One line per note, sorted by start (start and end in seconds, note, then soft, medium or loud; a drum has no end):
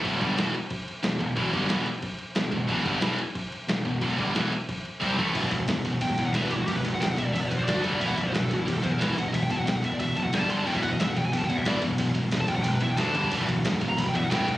0.03 0.20 E1 medium
0.03 0.19 E2 medium
0.03 0.20 B2 loud
0.03 0.20 E3 loud
0.03 kick loud
0.03 crash medium
0.20 0.36 G1 loud
0.20 0.35 G2 medium
0.20 0.36 D3 medium
0.20 0.36 G3 loud
0.20 kick loud
0.20 crash medium
0.36 0.53 E1 medium
0.36 0.53 E2 medium
0.36 0.53 B2 medium
0.36 0.53 E3 medium
0.36 snare loud
0.36 crash medium
0.54 crash medium
0.70 kick loud
0.70 crash medium
0.88 crash medium
1.03 1.19 E1 medium
1.03 1.17 E2 medium
1.03 1.17 B2 medium
1.03 snare loud
1.03 crash medium
1.19 1.36 E1 medium
1.19 1.33 E2 medium
1.19 1.33 B2 medium
1.19 kick medium
1.19 crash medium
1.36 1.52 E1 medium
1.36 1.52 E2 medium
1.36 1.53 B2 loud
1.36 1.53 E3 loud
1.36 kick loud
1.36 crash medium
1.52 1.69 G1 loud
1.52 1.68 G2 medium
1.52 1.69 D3 medium
1.52 1.69 G3 loud
1.52 kick loud
1.52 crash medium
1.69 1.85 E1 medium
1.69 1.85 E2 medium
1.69 1.86 B2 medium
1.69 1.86 E3 loud
1.69 snare loud
1.69 crash medium
1.86 crash medium
2.02 kick loud
2.02 crash medium
2.19 crash medium
2.35 2.52 E1 medium
2.35 2.49 E2 medium
2.35 2.49 B2 medium
2.35 snare loud
2.35 crash medium
2.51 2.68 E1 medium
2.51 2.65 E2 medium
2.51 2.66 B2 medium
2.51 kick medium
2.51 crash medium
2.67 2.85 E1 medium
2.67 2.84 E2 medium
2.67 2.85 B2 loud
2.67 2.85 E3 loud
2.67 kick loud
2.67 crash medium
2.85 3.01 G1 loud
2.85 3.01 G2 medium
2.85 3.01 D3 loud
2.85 3.02 G3 loud
2.85 kick loud
2.85 crash medium
3.01 3.17 E1 loud
3.01 3.18 E2 medium
3.01 3.18 B2 loud
3.01 3.18 E3 loud
3.01 snare loud
3.01 crash medium
3.18 crash medium
3.35 kick loud
3.35 crash medium
3.52 crash medium
3.68 3.84 E1 medium
3.68 3.82 E2 medium
3.68 3.83 B2 medium
3.68 snare loud
3.68 crash medium
3.85 4.01 E1 medium
3.85 3.98 E2 medium
3.85 3.99 B2 medium
3.85 kick medium
3.85 crash medium
4.01 4.18 E1 medium
4.01 4.18 E2 medium
4.01 4.18 B2 medium
4.01 4.18 E3 loud
4.01 kick loud
4.01 crash medium
4.18 4.34 G1 medium
4.18 4.34 G2 loud
4.18 4.34 D3 medium
4.18 4.34 G3 loud
4.18 kick loud
4.18 crash medium
4.34 4.51 E1 loud
4.34 4.51 E2 medium
4.34 4.51 B2 medium
4.34 4.51 E3 loud
4.34 snare loud
4.34 crash medium
4.52 crash medium
4.69 kick loud
4.69 crash medium
4.85 crash medium
5.00 5.17 C2 medium
5.00 5.17 C3 medium
5.00 5.17 G3 loud
5.00 5.17 C4 loud
5.00 kick loud
5.00 crash medium
5.17 5.34 A1 medium
5.17 5.34 A2 loud
5.17 5.34 E3 loud
5.17 5.34 A3 loud
5.17 kick loud
5.17 crash medium
5.34 5.47 E1 medium
5.34 5.50 E2 medium
5.34 5.50 B2 medium
5.34 5.51 E3 medium
5.34 kick medium
5.34 ride medium
5.43 kick medium
5.51 5.63 E1 medium
5.51 5.66 E2 medium
5.51 5.66 B2 medium
5.51 kick medium
5.51 ride medium
5.60 kick medium
5.68 5.80 E1 medium
5.68 5.83 E2 medium
5.68 5.83 B2 medium
5.68 kick medium
5.68 snare loud
5.68 ride loud
5.76 kick medium
5.85 5.96 E1 medium
5.85 6.00 E2 medium
5.85 6.00 B2 medium
5.85 kick medium
5.85 ride medium
5.93 kick medium
6.01 6.13 E1 medium
6.01 6.16 E2 medium
6.01 6.16 B2 medium
6.01 6.25 G5 medium
6.01 kick medium
6.01 ride loud
6.10 kick medium
6.18 6.29 E2 medium
6.18 6.33 E2 medium
6.18 6.34 B2 medium
6.18 kick medium
6.18 ride medium
6.26 6.34 F#5 medium
6.26 kick medium
6.33 6.46 E1 medium
6.33 6.50 E2 medium
6.33 6.50 B2 medium
6.33 6.51 E3 loud
6.33 6.42 E5 medium
6.33 kick medium
6.33 snare loud
6.33 ride loud
6.42 6.51 B4 medium
6.42 kick medium
6.50 6.63 E1 medium
6.50 6.66 E2 medium
6.50 6.66 B2 medium
6.50 6.56 G4 medium
6.50 kick medium
6.50 ride medium
6.56 6.62 E4 medium
6.56 kick medium
6.62 6.68 F#4 medium
6.68 6.79 E1 medium
6.68 6.83 E2 medium
6.68 6.83 B2 medium
6.68 6.76 G4 medium
6.68 kick medium
6.68 ride loud
6.76 6.81 B4 loud
6.76 kick medium
6.84 6.96 E1 medium
6.84 6.99 E2 medium
6.84 7.00 B2 medium
6.84 kick medium
6.84 ride medium
6.93 7.01 F#5 medium
6.93 kick medium
7.01 7.13 E1 medium
7.01 7.16 E2 medium
7.01 7.16 B2 medium
7.01 7.09 G5 loud
7.01 kick medium
7.01 snare loud
7.01 ride loud
7.09 7.17 F#5 medium
7.09 kick medium
7.17 7.29 E1 medium
7.17 7.32 E2 medium
7.17 7.32 B2 medium
7.17 7.25 E5 loud
7.17 kick medium
7.17 ride medium
7.25 7.33 D5 loud
7.25 kick medium
7.33 7.46 E1 medium
7.33 7.49 E2 medium
7.33 7.49 B2 medium
7.33 7.41 E5 loud
7.33 kick medium
7.33 ride loud
7.41 7.50 D5 medium
7.41 kick medium
7.50 7.66 E2 medium
7.50 7.63 E2 medium
7.50 7.66 B2 medium
7.50 7.57 B4 medium
7.50 kick medium
7.50 ride medium
7.57 7.64 C5 medium
7.57 kick medium
7.65 7.79 D2 medium
7.65 7.83 D3 medium
7.65 7.83 A3 medium
7.65 7.74 D5 loud
7.65 kick medium
7.65 ride loud
7.69 7.84 D4 loud
7.69 snare loud
7.75 7.82 F#4 medium
7.75 kick medium
7.82 7.96 G1 medium
7.82 7.99 G2 medium
7.82 8.00 D3 loud
7.82 8.00 G3 loud
7.82 7.91 A4 medium
7.82 kick medium
7.82 ride medium
7.91 8.00 D5 medium
7.91 kick medium
7.99 8.12 E1 medium
7.99 8.16 E2 medium
7.99 8.15 B2 medium
7.99 8.16 E3 medium
7.99 8.08 E5 medium
7.99 kick medium
7.99 ride medium
8.08 8.16 F#5 loud
8.08 kick medium
8.16 8.29 E1 medium
8.16 8.31 E2 medium
8.16 8.31 B2 medium
8.16 8.23 E5 loud
8.16 kick medium
8.16 ride medium
8.23 8.33 C5 medium
8.23 8.28 D5 medium
8.23 kick medium
8.32 8.46 E1 medium
8.32 8.48 E2 medium
8.32 8.48 B2 medium
8.32 8.42 B4 medium
8.32 kick medium
8.32 snare loud
8.32 ride medium
8.43 8.50 A4 medium
8.43 kick medium
8.49 8.62 E1 medium
8.49 8.64 E2 medium
8.49 8.65 B2 medium
8.49 8.59 F#4 medium
8.49 kick medium
8.49 ride medium
8.59 8.67 E4 medium
8.59 kick medium
8.65 8.79 E1 medium
8.65 8.81 E2 medium
8.65 8.81 B2 medium
8.65 8.76 G4 medium
8.65 kick medium
8.65 ride loud
8.76 8.83 A4 medium
8.76 kick medium
8.82 8.97 E2 medium
8.82 8.96 E2 medium
8.82 8.97 B2 medium
8.82 8.92 C5 loud
8.82 kick medium
8.82 ride medium
8.92 9.00 A#4 medium
8.92 kick medium
8.98 9.12 E1 medium
8.98 9.14 E2 medium
8.98 9.14 B2 medium
8.98 9.15 E3 medium
8.98 9.08 B4 loud
8.98 kick medium
8.98 ride loud
9.02 snare loud
9.09 9.14 E4 medium
9.09 kick medium
9.15 9.29 E1 medium
9.15 9.31 E2 medium
9.15 9.31 B2 medium
9.15 kick medium
9.15 ride medium
9.19 9.28 F#5 loud
9.26 9.34 D#5 medium
9.26 kick medium
9.32 9.45 E1 medium
9.32 9.48 E2 medium
9.32 9.48 B2 medium
9.32 9.42 E5 medium
9.32 kick medium
9.32 ride loud
9.42 9.51 G5 medium
9.42 kick medium
9.49 9.62 E1 medium
9.49 9.64 E2 medium
9.49 9.65 B2 medium
9.49 9.59 A5 loud
9.49 kick medium
9.49 ride medium
9.59 9.67 F#5 medium
9.59 kick medium
9.65 9.79 E1 medium
9.65 9.81 E2 medium
9.65 9.81 B2 medium
9.65 9.75 G5 loud
9.65 kick medium
9.65 snare loud
9.65 ride loud
9.75 9.84 F#5 medium
9.75 kick medium
9.82 9.95 E1 medium
9.82 9.98 E2 medium
9.82 9.98 B2 medium
9.82 9.93 E5 medium
9.82 kick medium
9.82 ride medium
9.92 10.00 D5 medium
9.92 kick medium
9.99 10.12 E1 medium
9.99 10.14 E2 medium
9.99 10.14 B2 medium
9.99 10.16 E5 medium
9.99 kick medium
9.99 ride loud
10.09 kick medium
10.15 10.28 F#1 medium
10.15 10.31 E2 medium
10.15 10.31 B2 medium
10.15 10.23 A5 loud
10.15 kick medium
10.15 ride medium
10.24 10.34 F#5 medium
10.24 kick medium
10.32 10.45 G1 medium
10.32 10.47 G2 loud
10.32 10.48 D3 medium
10.32 10.48 G3 loud
10.32 10.39 G5 medium
10.32 kick medium
10.32 snare loud
10.32 ride loud
10.39 10.48 A5 medium
10.39 kick medium
10.48 10.62 G1 medium
10.48 10.64 G2 medium
10.48 10.65 D3 loud
10.48 10.65 G3 loud
10.48 10.58 C6 loud
10.48 ride medium
10.57 10.66 A5 medium
10.64 10.78 E1 medium
10.64 10.81 E2 medium
10.64 10.80 B2 loud
10.64 10.82 E3 loud
10.64 10.75 G5 medium
10.64 kick medium
10.64 crash loud
10.75 10.82 E5 medium
10.75 kick medium
10.82 10.95 E1 medium
10.82 10.97 E2 medium
10.82 10.97 B2 medium
10.82 10.91 F#5 loud
10.82 kick medium
10.82 ride medium
10.92 11.00 D#5 medium
10.92 kick medium
10.99 11.11 E1 medium
10.99 11.14 E2 medium
10.99 11.14 B2 medium
10.99 11.08 E5 medium
10.99 kick medium
10.99 snare loud
10.99 ride loud
11.08 11.16 F#5 loud
11.08 kick medium
11.16 11.28 E1 medium
11.16 11.31 E2 medium
11.16 11.31 B2 medium
11.16 11.25 G5 medium
11.16 kick medium
11.16 ride medium
11.25 11.33 G#5 loud
11.25 kick medium
11.33 11.45 E1 medium
11.33 11.48 E2 medium
11.33 11.48 B2 medium
11.33 11.38 G5 medium
11.33 kick loud
11.33 ride loud
11.38 11.43 A5 medium
11.42 11.49 G5 medium
11.42 kick medium
11.49 11.64 E2 medium
11.49 11.61 E2 medium
11.49 11.64 B2 medium
11.49 11.57 F#5 loud
11.49 kick medium
11.49 ride medium
11.57 11.67 E5 medium
11.57 kick medium
11.65 11.77 E1 medium
11.65 11.80 E2 medium
11.65 11.81 B2 medium
11.65 11.82 E3 medium
11.65 11.77 D5 medium
11.65 kick medium
11.65 snare loud
11.65 ride medium
11.74 kick medium
11.81 11.94 E1 medium
11.81 11.97 E2 medium
11.81 11.97 B2 medium
11.81 kick medium
11.81 ride medium
11.91 kick medium
11.98 12.10 E1 medium
11.98 12.13 E2 medium
11.98 12.14 B2 medium
11.98 kick medium
11.98 ride loud
12.07 kick medium
12.15 12.27 E1 medium
12.15 12.30 E2 medium
12.15 12.30 B2 medium
12.15 kick medium
12.15 ride medium
12.24 kick medium
12.31 12.44 E1 loud
12.31 12.47 E2 medium
12.31 12.48 B2 medium
12.31 kick medium
12.31 snare loud
12.31 ride loud
12.40 12.48 A5 loud
12.40 kick medium
12.48 12.60 E1 medium
12.48 12.62 E2 medium
12.48 12.62 B2 medium
12.48 12.55 G5 loud
12.48 kick medium
12.48 ride medium
12.56 12.63 F#5 loud
12.56 kick medium
12.63 12.77 E1 medium
12.63 12.79 E2 medium
12.63 12.79 B2 medium
12.63 12.72 G5 loud
12.63 kick medium
12.63 ride loud
12.73 12.82 B4 medium
12.73 kick medium
12.80 12.96 E2 medium
12.80 12.93 E2 medium
12.80 12.96 B2 medium
12.80 12.90 E5 loud
12.80 kick medium
12.80 ride medium
12.90 12.97 G5 medium
12.90 kick medium
12.97 13.10 D2 medium
12.97 13.13 D3 medium
12.97 13.14 A3 loud
12.97 13.14 D4 loud
12.97 13.29 A5 loud
12.97 kick medium
12.97 snare loud
12.97 ride loud
13.07 kick medium
13.14 13.27 G1 medium
13.14 13.30 G2 medium
13.14 13.31 D3 loud
13.14 13.31 G3 loud
13.14 kick medium
13.14 ride medium
13.23 kick medium
13.31 13.43 E1 medium
13.31 13.46 E2 medium
13.31 13.47 B2 loud
13.31 13.47 E3 loud
13.31 kick medium
13.31 ride loud
13.40 kick medium
13.47 13.60 E1 medium
13.47 13.62 E2 medium
13.47 13.63 B2 medium
13.47 kick medium
13.47 ride medium
13.57 kick medium
13.64 13.76 E1 loud
13.64 13.80 E2 medium
13.64 13.80 B2 medium
13.64 kick medium
13.64 snare loud
13.64 ride loud
13.73 kick medium
13.81 13.93 E1 medium
13.81 13.96 E2 medium
13.81 13.96 B2 medium
13.81 kick medium
13.81 ride medium
13.89 13.97 A#5 medium
13.89 kick medium
13.98 14.09 E1 medium
13.98 14.12 E2 medium
13.98 14.13 B2 medium
13.98 14.06 B5 loud
13.98 kick medium
13.98 ride loud
14.06 14.15 G5 medium
14.06 kick medium
14.14 14.29 E2 medium
14.14 14.26 E2 medium
14.14 14.29 B2 medium
14.14 14.23 E5 loud
14.14 kick medium
14.14 ride medium
14.23 14.30 F#5 medium
14.23 kick medium
14.30 14.43 E1 medium
14.30 14.45 E2 medium
14.30 14.46 B2 loud
14.30 14.47 E3 loud
14.30 14.54 G5 loud
14.30 kick medium
14.30 snare loud
14.30 ride medium
14.40 kick medium
14.46 14.58 E1 medium
14.46 14.58 E2 medium
14.46 14.58 B2 medium
14.46 kick medium
14.46 ride medium